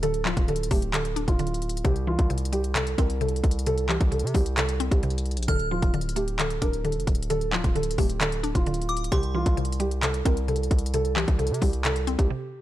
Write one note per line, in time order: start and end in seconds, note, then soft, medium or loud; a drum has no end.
0.00 0.35 D1 loud
0.00 0.47 D3 medium
0.00 0.48 D4 medium
0.00 0.21 A4 loud
0.00 closed hi-hat medium
0.14 closed hi-hat soft
0.25 1.39 F3 medium
0.25 0.44 F4 medium
0.25 clap loud
0.37 0.70 D1 loud
0.37 kick loud
0.37 closed hi-hat medium
0.48 0.92 D3 medium
0.48 0.67 A4 medium
0.48 closed hi-hat medium
0.56 closed hi-hat medium
0.63 closed hi-hat medium
0.71 1.26 D1 loud
0.71 1.85 A3 medium
0.71 0.89 G4 medium
0.71 kick loud
0.71 open hi-hat medium
0.82 closed hi-hat medium
0.93 1.38 D3 loud
0.93 1.26 A4 medium
0.93 clap loud
0.93 closed hi-hat medium
1.05 closed hi-hat medium
1.16 1.84 D4 medium
1.16 closed hi-hat medium
1.28 1.82 D1 loud
1.28 1.81 F4 medium
1.28 kick medium
1.28 closed hi-hat medium
1.39 1.85 D3 medium
1.39 closed hi-hat soft
1.47 closed hi-hat soft
1.54 closed hi-hat medium
1.62 closed hi-hat medium
1.69 closed hi-hat medium
1.77 closed hi-hat medium
1.85 2.17 C2 loud
1.85 2.29 C3 loud
1.85 2.03 G4 loud
1.85 kick loud
1.85 closed hi-hat medium
1.96 closed hi-hat soft
2.07 3.21 E3 medium
2.07 2.26 F4 medium
2.19 2.95 C2 loud
2.19 kick loud
2.19 closed hi-hat soft
2.30 2.74 C3 medium
2.30 closed hi-hat medium
2.38 closed hi-hat medium
2.45 closed hi-hat medium
2.52 3.66 G3 medium
2.52 2.72 G4 medium
2.52 closed hi-hat medium
2.64 closed hi-hat medium
2.75 3.20 C3 medium
2.75 2.94 A4 medium
2.75 clap loud
2.75 closed hi-hat medium
2.87 closed hi-hat medium
2.98 3.42 C2 loud
2.98 4.12 C4 medium
2.98 3.17 A#4 medium
2.98 kick loud
2.98 closed hi-hat medium
3.10 closed hi-hat medium
3.21 3.66 C3 medium
3.21 3.64 A4 medium
3.21 closed hi-hat soft
3.29 closed hi-hat medium
3.36 closed hi-hat medium
3.44 3.98 C2 loud
3.44 kick medium
3.44 closed hi-hat medium
3.51 closed hi-hat medium
3.59 closed hi-hat medium
3.66 4.10 C3 medium
3.66 3.85 A4 loud
3.66 closed hi-hat medium
3.78 closed hi-hat soft
3.89 5.03 E3 medium
3.89 4.08 G4 medium
3.89 clap loud
4.01 4.25 C2 loud
4.01 kick loud
4.01 closed hi-hat medium
4.12 4.56 C3 medium
4.12 4.31 A4 medium
4.12 closed hi-hat medium
4.19 4.34 C3 loud
4.19 closed hi-hat medium
4.27 closed hi-hat medium
4.34 4.89 C2 loud
4.34 5.48 G3 medium
4.34 4.53 G4 medium
4.34 kick loud
4.34 open hi-hat medium
4.46 closed hi-hat medium
4.57 5.02 C3 medium
4.57 4.89 A4 medium
4.57 clap loud
4.57 closed hi-hat medium
4.69 closed hi-hat medium
4.80 5.48 C4 loud
4.80 closed hi-hat medium
4.91 5.38 C2 loud
4.91 5.45 G4 medium
4.91 kick loud
4.91 closed hi-hat medium
5.03 5.48 C3 medium
5.03 closed hi-hat soft
5.10 closed hi-hat medium
5.18 closed hi-hat medium
5.26 closed hi-hat soft
5.31 closed hi-hat medium
5.37 5.48 A#1 loud
5.37 closed hi-hat medium
5.43 closed hi-hat medium
5.48 5.81 D1 loud
5.48 5.93 D3 loud
5.48 5.67 A4 loud
5.48 6.81 F6 loud
5.48 kick loud
5.48 closed hi-hat medium
5.59 closed hi-hat soft
5.71 6.85 F3 medium
5.71 5.90 F4 medium
5.82 6.59 D1 loud
5.82 kick loud
5.82 closed hi-hat soft
5.94 6.38 D3 medium
5.94 closed hi-hat medium
6.01 closed hi-hat medium
6.09 closed hi-hat medium
6.16 7.30 A3 medium
6.16 6.35 G4 medium
6.16 closed hi-hat medium
6.28 closed hi-hat medium
6.39 6.83 D3 medium
6.39 6.58 A4 medium
6.39 clap loud
6.39 closed hi-hat medium
6.50 closed hi-hat medium
6.62 6.97 D1 loud
6.62 7.75 D4 medium
6.62 6.80 A#4 medium
6.62 kick medium
6.62 closed hi-hat medium
6.73 closed hi-hat medium
6.85 7.29 D3 medium
6.85 7.27 A4 medium
6.85 closed hi-hat soft
6.92 7.07 E1 medium
6.92 closed hi-hat medium
7.00 closed hi-hat medium
7.07 7.62 D1 loud
7.07 kick medium
7.07 closed hi-hat medium
7.15 closed hi-hat medium
7.23 closed hi-hat medium
7.30 7.75 D3 medium
7.30 7.49 A4 loud
7.30 closed hi-hat medium
7.41 closed hi-hat soft
7.52 8.66 F3 medium
7.52 7.71 F4 medium
7.52 clap loud
7.64 7.97 D1 loud
7.64 kick loud
7.64 closed hi-hat medium
7.75 8.19 D3 medium
7.75 7.94 A4 medium
7.75 closed hi-hat soft
7.83 closed hi-hat medium
7.91 closed hi-hat medium
7.98 8.53 D1 loud
7.98 9.12 A3 medium
7.98 8.17 G4 medium
7.98 kick loud
7.98 open hi-hat medium
8.10 closed hi-hat medium
8.21 8.66 D3 medium
8.21 8.53 A4 medium
8.21 clap loud
8.21 closed hi-hat medium
8.32 closed hi-hat medium
8.43 9.12 D4 medium
8.43 closed hi-hat medium
8.55 9.10 D1 loud
8.55 9.09 F4 medium
8.55 kick loud
8.55 closed hi-hat medium
8.66 9.12 D3 medium
8.66 closed hi-hat soft
8.74 closed hi-hat medium
8.82 closed hi-hat medium
8.89 9.11 D6 medium
8.89 closed hi-hat medium
8.97 closed hi-hat medium
9.04 closed hi-hat medium
9.12 9.45 C2 loud
9.12 9.56 C3 loud
9.12 9.30 G4 loud
9.12 10.44 C6 medium
9.12 kick loud
9.12 closed hi-hat medium
9.23 closed hi-hat soft
9.35 10.48 E3 medium
9.35 9.53 F4 medium
9.46 10.22 C2 loud
9.46 kick loud
9.46 closed hi-hat medium
9.57 10.01 C3 medium
9.57 closed hi-hat medium
9.65 closed hi-hat medium
9.72 closed hi-hat medium
9.80 10.94 G3 medium
9.80 9.99 G4 medium
9.80 closed hi-hat medium
9.91 closed hi-hat medium
10.03 10.47 C3 medium
10.03 10.21 A4 medium
10.03 clap loud
10.03 closed hi-hat medium
10.14 closed hi-hat medium
10.25 10.69 C2 loud
10.25 11.39 C4 medium
10.25 10.44 A#4 medium
10.25 kick medium
10.25 closed hi-hat medium
10.37 closed hi-hat medium
10.48 10.93 C3 medium
10.48 10.91 A4 medium
10.48 closed hi-hat soft
10.56 closed hi-hat medium
10.63 closed hi-hat medium
10.71 11.25 C2 loud
10.71 kick medium
10.71 closed hi-hat medium
10.79 closed hi-hat medium
10.86 closed hi-hat medium
10.94 11.38 C3 medium
10.94 11.13 A4 loud
10.94 closed hi-hat medium
11.05 closed hi-hat soft
11.16 12.30 E3 medium
11.16 11.35 G4 medium
11.16 clap loud
11.28 11.52 C2 loud
11.28 kick loud
11.28 closed hi-hat medium
11.39 11.84 C3 medium
11.39 11.58 A4 medium
11.39 closed hi-hat medium
11.47 11.61 C3 loud
11.47 closed hi-hat medium
11.54 closed hi-hat medium
11.61 12.16 C2 loud
11.61 12.62 G3 medium
11.61 11.80 G4 medium
11.61 kick loud
11.61 open hi-hat medium
11.73 closed hi-hat medium
11.85 12.29 C3 medium
11.85 12.17 A4 medium
11.85 clap loud
11.85 closed hi-hat medium
11.96 closed hi-hat medium
12.07 12.62 C4 loud
12.07 closed hi-hat medium
12.18 12.30 C2 loud
12.18 12.62 G4 medium
12.18 kick loud
12.18 closed hi-hat medium
12.30 12.62 C3 medium